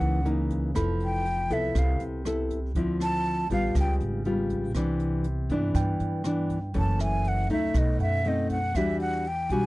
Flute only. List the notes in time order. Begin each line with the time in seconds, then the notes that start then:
Already playing: F#5
1.04 G5
1.53 E5
1.78 F5
3.02 A5
3.53 F5
3.80 G5
6.78 A5
7.03 G#5
7.28 F#5
7.52 E5
7.78 D#5
8.01 E5
8.28 D#5
8.51 F#5
8.76 E5
9.01 F#5
9.27 G5
9.52 G#5